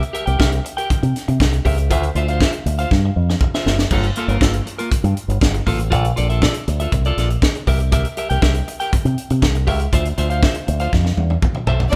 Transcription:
0.03 closed hi-hat
0.13 clean electric guitar G4 A#4 E5, closed hi-hat
0.26 fingered electric bass C2, clean electric guitar G4 A#4 G5, closed hi-hat
0.39 fingered electric bass C2, clean electric guitar G4 A#4 E5, kick, snare
0.52 muted clean electric guitar stroke, closed hi-hat
0.65 muted clean electric guitar stroke, closed hi-hat
0.77 clean electric guitar G4 A#4 G5, closed hi-hat
0.90 muted clean electric guitar stroke, muted fingered electric bass stroke, kick, closed hi-hat
1.03 fingered electric bass C3, muted clean electric guitar stroke, closed hi-hat
1.16 snare, closed hi-hat
1.28 fingered electric bass C3, muted clean electric guitar stroke, closed hi-hat
1.40 fingered electric bass C2, muted clean electric guitar stroke, kick, snare
1.53 muted clean electric guitar stroke, closed hi-hat
1.65 fingered electric bass C#2, clean electric guitar G4 A#4 E5, kick, open hi-hat
1.78 muted clean electric guitar stroke, closed hi-hat
1.90 fingered electric bass D2, clean electric guitar F4 C5 E5, kick, closed hi-hat
2.03 closed hi-hat
2.15 fingered electric bass D2, clean electric guitar F4 C5 E5, closed hi-hat
2.28 clean electric guitar F4 C5 F5, closed hi-hat
2.41 clean electric guitar F4 C5 E5, kick, snare
2.52 muted clean electric guitar stroke, closed hi-hat
2.66 fingered electric bass D2, muted clean electric guitar stroke, closed hi-hat
2.78 clean electric guitar F4 C5 F5, closed hi-hat
2.91 fingered electric bass G2, muted clean electric guitar stroke, kick, snare
3.05 muted clean electric guitar stroke
3.16 fingered electric bass F2
3.30 muted clean electric guitar stroke, snare
3.41 muted clean electric guitar stroke, kick
3.54 clean electric guitar F4 C5 E5, snare
3.66 fingered electric bass F#1, clean electric guitar F4 C5 E5, snare
3.79 muted clean electric guitar stroke, snare
3.91 fingered electric bass G1, clean electric guitar A#3 F4 A4, kick, crash
4.03 closed hi-hat
4.16 clean electric guitar A#3 F4 A4, closed hi-hat
4.28 fingered electric bass G1, clean electric guitar A#3 F4 A#4, closed hi-hat
4.41 fingered electric bass G1, clean electric guitar A#3 F4 A4, kick, snare
4.53 muted clean electric guitar stroke, closed hi-hat
4.66 muted clean electric guitar stroke, closed hi-hat
4.78 clean electric guitar A#3 F4 A#4, closed hi-hat
4.91 muted fingered electric bass stroke, kick, closed hi-hat
5.04 fingered electric bass G2, muted clean electric guitar stroke, closed hi-hat
5.17 closed hi-hat
5.28 fingered electric bass G1, muted clean electric guitar stroke, closed hi-hat
5.41 fingered electric bass G1, muted clean electric guitar stroke, kick, snare
5.54 muted clean electric guitar stroke, closed hi-hat
5.67 fingered electric bass A1, clean electric guitar A#3 F4 A4, kick, open hi-hat
5.80 muted clean electric guitar stroke, closed hi-hat
5.91 fingered electric bass A#1, clean electric guitar F4 A4 D5, kick, closed hi-hat
6.05 closed hi-hat
6.16 fingered electric bass A#1, clean electric guitar F4 A4 D5, closed hi-hat
6.29 clean electric guitar F4 A4 E5, closed hi-hat
6.42 clean electric guitar F4 A4 D5, kick, snare
6.54 muted clean electric guitar stroke, closed hi-hat
6.68 fingered electric bass D2, muted clean electric guitar stroke, closed hi-hat
6.80 clean electric guitar F4 A4 E5, closed hi-hat
6.92 fingered electric bass C2, muted clean electric guitar stroke, kick, closed hi-hat
7.05 clean electric guitar F4 A4 D5, closed hi-hat
7.17 fingered electric bass A#1, clean electric guitar F4 A4 D5, snare, closed hi-hat
7.30 muted clean electric guitar stroke, closed hi-hat
7.42 muted clean electric guitar stroke, kick, snare
7.55 muted clean electric guitar stroke, closed hi-hat
7.67 fingered electric bass C2, clean electric guitar G4 A#4 E5, kick, open hi-hat
7.79 muted clean electric guitar stroke, closed hi-hat
7.92 clean electric guitar G4 A#4 E5, kick, closed hi-hat
8.05 closed hi-hat
8.17 clean electric guitar G4 A#4 E5, closed hi-hat
8.30 fingered electric bass C2, clean electric guitar G4 A#4 G5, closed hi-hat
8.41 fingered electric bass C2, clean electric guitar G4 A#4 E5, kick, snare
8.54 muted clean electric guitar stroke, closed hi-hat
8.68 muted clean electric guitar stroke, closed hi-hat
8.80 clean electric guitar G4 A#4 G5, closed hi-hat
8.92 muted clean electric guitar stroke, muted fingered electric bass stroke, kick, closed hi-hat
9.05 fingered electric bass C3, muted clean electric guitar stroke, closed hi-hat
9.18 closed hi-hat
9.30 fingered electric bass C3, muted clean electric guitar stroke, closed hi-hat
9.42 fingered electric bass C2, muted clean electric guitar stroke, kick, snare
9.55 muted clean electric guitar stroke, closed hi-hat
9.67 fingered electric bass C#2, clean electric guitar G4 A#4 E5, kick, open hi-hat
9.80 muted clean electric guitar stroke, closed hi-hat
9.93 fingered electric bass D2, clean electric guitar F4 C5 E5, kick, closed hi-hat
10.05 closed hi-hat
10.18 fingered electric bass D2, clean electric guitar F4 C5 E5, closed hi-hat
10.30 clean electric guitar F4 C5 F5, closed hi-hat
10.43 clean electric guitar F4 C5 E5, kick, snare
10.54 muted clean electric guitar stroke, closed hi-hat
10.67 fingered electric bass D2, muted clean electric guitar stroke, closed hi-hat
10.80 clean electric guitar F4 C5 F5, closed hi-hat
10.93 fingered electric bass F2, muted clean electric guitar stroke, kick, snare
11.05 muted clean electric guitar stroke, snare
11.17 fingered electric bass E2, high tom
11.30 muted clean electric guitar stroke, high tom
11.42 muted clean electric guitar stroke, kick, mid tom
11.55 muted clean electric guitar stroke, mid tom
11.67 fingered electric bass B1, clean electric guitar A4 C5 E5, floor tom
11.80 muted clean electric guitar stroke, floor tom
11.91 clean electric guitar A#3, string section D4 D5, crash

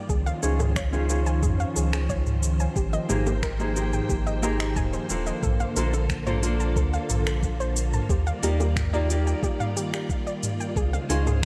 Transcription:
Already playing: string machine D#3 F4
0.09 sub bass C#2, string machine F3 C#4 C5, synth arpeggio sound G#4, kick, shaker
0.26 synth arpeggio sound F5, high bongo, shaker
0.42 sub bass C#2, nylon-string guitar C#4 D#4 F4 G#4 C5, synth arpeggio sound G#4, shaker
0.60 synth arpeggio sound G#4, mid tom, high bongo, shaker
0.76 synth arpeggio sound C#5, finger snap, kick, shaker
0.92 nylon-string guitar C#4 D#4 F4 G#4 C5, shaker
1.08 nylon-string guitar C#4 D#4 F4 G#4 C5, shaker
1.26 synth arpeggio sound G#5, shaker
1.43 sub bass F2, synth arpeggio sound G#4, kick, mid tom, shaker
1.60 synth arpeggio sound F5, shaker
1.76 sub bass C#2, synth arpeggio sound G#4, shaker
1.93 synth arpeggio sound G#4, finger snap, shaker
2.09 synth arpeggio sound C#5, kick, shaker
2.26 mid tom, shaker
2.43 shaker
2.60 synth arpeggio sound G#5, shaker
2.76 sub bass G#1, string machine A#3 G5, synth arpeggio sound G4, kick, shaker
2.93 synth arpeggio sound D#5, high bongo, shaker
3.09 sub bass G#1, nylon-string guitar A#3 D#4 G4 G#4 C5, synth arpeggio sound G4, mid tom, shaker
3.26 synth arpeggio sound G4, high bongo, shaker
3.43 synth arpeggio sound A#4, finger snap, kick, shaker
3.59 nylon-string guitar A#3 D#4 G4 G#4 C5, shaker
3.75 nylon-string guitar A#3 D#4 G4 G#4 C5, shaker
3.93 synth arpeggio sound G5, mid tom, shaker
4.09 sub bass G#1, synth arpeggio sound G4, kick, shaker
4.27 synth arpeggio sound D#5, shaker
4.42 nylon-string guitar A#3 D#4 G4 G#4 C5, synth arpeggio sound D#5, shaker
4.60 synth arpeggio sound D#5, finger snap, shaker
4.76 sub bass D#1, synth arpeggio sound G#5, kick, mid tom, shaker
4.93 synth arpeggio sound C5, shaker
5.09 sub bass D#1, nylon-string guitar A#3 D4 F4 A4 C5, shaker
5.27 synth arpeggio sound D#5, shaker
5.43 sub bass A#1, string machine D3 F4 A4, synth arpeggio sound A4, kick, mid tom, shaker
5.60 synth arpeggio sound F5, high bongo, shaker
5.76 sub bass A#1, nylon-string guitar A#3 D4 F4 A4 C5, synth arpeggio sound A4, open hi-hat, shaker
5.93 synth arpeggio sound A4, high bongo, shaker
6.09 finger snap, kick, shaker
6.26 nylon-string guitar A#3 D4 F4 A4 C5, synth arpeggio sound C5, mid tom, shaker
6.41 nylon-string guitar A#3 D4 F4 A4 C5, open hi-hat, shaker
6.60 synth arpeggio sound A5, shaker
6.76 sub bass D2, synth arpeggio sound A4, kick, shaker
6.93 synth arpeggio sound F5, shaker
7.09 sub bass A#1, synth arpeggio sound A4, mid tom, open hi-hat, shaker
7.27 synth arpeggio sound A4, finger snap, shaker
7.43 kick, shaker
7.60 synth arpeggio sound C5, shaker
7.76 open hi-hat, shaker
7.93 synth arpeggio sound A5, mid tom, shaker
8.09 sub bass D#2, string machine D#3 G3 D5, synth arpeggio sound G4, kick, shaker
8.27 synth arpeggio sound F5, shaker
8.43 sub bass D#2, nylon-string guitar A#3 D#4 F4 G4 D5, synth arpeggio sound G4, open hi-hat, shaker
8.60 synth arpeggio sound G4, high bongo, shaker
8.76 finger snap, kick, mid tom, shaker
8.93 nylon-string guitar A#3 D#4 F4 G4 D5, synth arpeggio sound D5, shaker
9.08 nylon-string guitar A#3 D#4 F4 G4 D5, open hi-hat, shaker
9.27 synth arpeggio sound G5, shaker
9.43 synth arpeggio sound G4, kick, shaker
9.60 synth arpeggio sound F5, mid tom, shaker
9.77 synth arpeggio sound G4, open hi-hat, shaker
9.94 synth arpeggio sound G4, finger snap, shaker
10.09 kick, shaker
10.27 synth arpeggio sound D5, shaker
10.43 mid tom, open hi-hat, shaker
10.60 synth arpeggio sound G5, shaker
10.76 sub bass C#2, string machine C#3 G#3 D#4 C5, synth arpeggio sound G#4, kick, shaker
10.93 synth arpeggio sound F5, high bongo, shaker
11.09 sub bass C#2, nylon-string guitar C#4 D#4 F4 G#4 C5, synth arpeggio sound G#4, open hi-hat, shaker
11.27 synth arpeggio sound G#4, mid tom, high bongo, shaker

